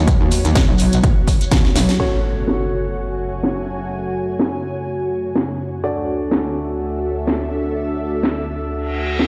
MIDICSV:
0, 0, Header, 1, 9, 480
1, 0, Start_track
1, 0, Key_signature, 3, "minor"
1, 0, Tempo, 480000
1, 76, Time_signature, 4, 2, 24, 8
1, 9270, End_track
2, 0, Start_track
2, 0, Title_t, "Ambient pad"
2, 0, Program_c, 0, 92
2, 0, Note_on_c, 0, 59, 75
2, 0, Note_on_c, 0, 66, 92
2, 0, Note_on_c, 0, 73, 79
2, 2259, Note_on_c, 0, 80, 83
2, 3213, Note_off_c, 0, 59, 0
2, 5835, Note_on_c, 0, 62, 87
2, 5999, Note_on_c, 0, 69, 79
2, 6047, Note_on_c, 0, 76, 88
2, 6751, Note_off_c, 0, 66, 0
2, 6868, Note_off_c, 0, 80, 0
2, 7384, Note_off_c, 0, 73, 0
2, 9270, Note_off_c, 0, 62, 0
2, 9270, Note_off_c, 0, 69, 0
2, 9270, Note_off_c, 0, 76, 0
2, 9270, End_track
3, 0, Start_track
3, 0, Title_t, "Grand piano"
3, 0, Program_c, 1, 0
3, 1997, Note_on_c, 1, 57, 72
3, 1997, Note_on_c, 1, 61, 64
3, 1997, Note_on_c, 1, 66, 66
3, 1997, Note_on_c, 1, 73, 81
3, 5811, Note_off_c, 1, 57, 0
3, 5811, Note_off_c, 1, 61, 0
3, 5811, Note_off_c, 1, 66, 0
3, 5811, Note_off_c, 1, 73, 0
3, 5837, Note_on_c, 1, 57, 73
3, 5837, Note_on_c, 1, 62, 66
3, 5837, Note_on_c, 1, 66, 68
3, 5837, Note_on_c, 1, 74, 80
3, 9270, Note_off_c, 1, 57, 0
3, 9270, Note_off_c, 1, 62, 0
3, 9270, Note_off_c, 1, 66, 0
3, 9270, Note_off_c, 1, 74, 0
3, 9270, End_track
4, 0, Start_track
4, 0, Title_t, "Analog synth pad"
4, 0, Program_c, 2, 89
4, 0, Note_on_c, 2, 54, 78
4, 0, Note_on_c, 2, 59, 71
4, 0, Note_on_c, 2, 63, 90
4, 1956, Note_off_c, 2, 54, 0
4, 1956, Note_off_c, 2, 59, 0
4, 1957, Note_off_c, 2, 63, 0
4, 1996, Note_on_c, 2, 49, 68
4, 1997, Note_on_c, 2, 57, 69
4, 1997, Note_on_c, 2, 66, 82
4, 1998, Note_on_c, 2, 42, 75
4, 5798, Note_off_c, 2, 42, 0
4, 5798, Note_off_c, 2, 49, 0
4, 5835, Note_on_c, 2, 38, 75
4, 5836, Note_on_c, 2, 50, 69
4, 9270, Note_off_c, 2, 38, 0
4, 9270, Note_off_c, 2, 50, 0
4, 9270, Note_off_c, 2, 57, 0
4, 9270, Note_off_c, 2, 66, 0
4, 9270, End_track
5, 0, Start_track
5, 0, Title_t, "Wobble bass"
5, 0, Program_c, 3, 39
5, 0, Note_on_c, 3, 39, 99
5, 188, Note_off_c, 3, 39, 0
5, 208, Note_on_c, 3, 39, 96
5, 427, Note_off_c, 3, 39, 0
5, 450, Note_on_c, 3, 39, 96
5, 668, Note_off_c, 3, 39, 0
5, 690, Note_on_c, 3, 35, 99
5, 1019, Note_off_c, 3, 35, 0
5, 1515, Note_on_c, 3, 39, 100
5, 1739, Note_off_c, 3, 39, 0
5, 1755, Note_on_c, 3, 35, 98
5, 1978, Note_off_c, 3, 35, 0
5, 9270, End_track
6, 0, Start_track
6, 0, Title_t, "Impact"
6, 0, Program_c, 4, 103
6, 1995, Note_on_c, 4, 60, 70
6, 3916, Note_off_c, 4, 60, 0
6, 9270, End_track
7, 0, Start_track
7, 0, Title_t, "Reverse cymbal"
7, 0, Program_c, 5, 119
7, 8715, Note_on_c, 5, 60, 75
7, 9270, Note_off_c, 5, 60, 0
7, 9270, End_track
8, 0, Start_track
8, 0, Title_t, "Shekere"
8, 79, Note_on_c, 9, 82, 42
8, 179, Note_off_c, 9, 82, 0
8, 313, Note_on_c, 9, 82, 91
8, 413, Note_off_c, 9, 82, 0
8, 453, Note_on_c, 9, 82, 50
8, 553, Note_off_c, 9, 82, 0
8, 556, Note_on_c, 9, 82, 41
8, 656, Note_off_c, 9, 82, 0
8, 783, Note_on_c, 9, 82, 89
8, 883, Note_off_c, 9, 82, 0
8, 926, Note_on_c, 9, 82, 51
8, 1026, Note_off_c, 9, 82, 0
8, 1033, Note_on_c, 9, 82, 39
8, 1133, Note_off_c, 9, 82, 0
8, 1277, Note_on_c, 9, 82, 93
8, 1377, Note_off_c, 9, 82, 0
8, 1416, Note_on_c, 9, 82, 53
8, 1511, Note_off_c, 9, 82, 0
8, 1511, Note_on_c, 9, 82, 38
8, 1611, Note_off_c, 9, 82, 0
8, 1760, Note_on_c, 9, 82, 93
8, 1860, Note_off_c, 9, 82, 0
8, 1890, Note_on_c, 9, 82, 49
8, 1990, Note_off_c, 9, 82, 0
8, 9270, End_track
9, 0, Start_track
9, 0, Title_t, "Drums"
9, 75, Note_on_c, 9, 36, 112
9, 76, Note_on_c, 9, 42, 71
9, 175, Note_off_c, 9, 36, 0
9, 176, Note_off_c, 9, 42, 0
9, 316, Note_on_c, 9, 46, 103
9, 416, Note_off_c, 9, 46, 0
9, 449, Note_on_c, 9, 42, 55
9, 549, Note_off_c, 9, 42, 0
9, 554, Note_on_c, 9, 38, 122
9, 555, Note_on_c, 9, 36, 122
9, 555, Note_on_c, 9, 42, 72
9, 654, Note_off_c, 9, 38, 0
9, 655, Note_off_c, 9, 36, 0
9, 655, Note_off_c, 9, 42, 0
9, 796, Note_on_c, 9, 46, 105
9, 896, Note_off_c, 9, 46, 0
9, 930, Note_on_c, 9, 42, 56
9, 1030, Note_off_c, 9, 42, 0
9, 1035, Note_on_c, 9, 36, 117
9, 1036, Note_on_c, 9, 42, 71
9, 1135, Note_off_c, 9, 36, 0
9, 1136, Note_off_c, 9, 42, 0
9, 1275, Note_on_c, 9, 36, 62
9, 1276, Note_on_c, 9, 46, 100
9, 1375, Note_off_c, 9, 36, 0
9, 1376, Note_off_c, 9, 46, 0
9, 1409, Note_on_c, 9, 42, 57
9, 1509, Note_off_c, 9, 42, 0
9, 1515, Note_on_c, 9, 36, 121
9, 1515, Note_on_c, 9, 38, 126
9, 1516, Note_on_c, 9, 42, 71
9, 1615, Note_off_c, 9, 36, 0
9, 1615, Note_off_c, 9, 38, 0
9, 1616, Note_off_c, 9, 42, 0
9, 1649, Note_on_c, 9, 38, 51
9, 1749, Note_off_c, 9, 38, 0
9, 1756, Note_on_c, 9, 38, 79
9, 1756, Note_on_c, 9, 46, 106
9, 1856, Note_off_c, 9, 38, 0
9, 1856, Note_off_c, 9, 46, 0
9, 1889, Note_on_c, 9, 38, 85
9, 1889, Note_on_c, 9, 46, 64
9, 1989, Note_off_c, 9, 38, 0
9, 1989, Note_off_c, 9, 46, 0
9, 2475, Note_on_c, 9, 38, 114
9, 2575, Note_off_c, 9, 38, 0
9, 3435, Note_on_c, 9, 38, 118
9, 3535, Note_off_c, 9, 38, 0
9, 4395, Note_on_c, 9, 38, 117
9, 4495, Note_off_c, 9, 38, 0
9, 5356, Note_on_c, 9, 38, 122
9, 5456, Note_off_c, 9, 38, 0
9, 6315, Note_on_c, 9, 38, 114
9, 6415, Note_off_c, 9, 38, 0
9, 7275, Note_on_c, 9, 38, 117
9, 7375, Note_off_c, 9, 38, 0
9, 8234, Note_on_c, 9, 38, 110
9, 8334, Note_off_c, 9, 38, 0
9, 9194, Note_on_c, 9, 38, 114
9, 9270, Note_off_c, 9, 38, 0
9, 9270, End_track
0, 0, End_of_file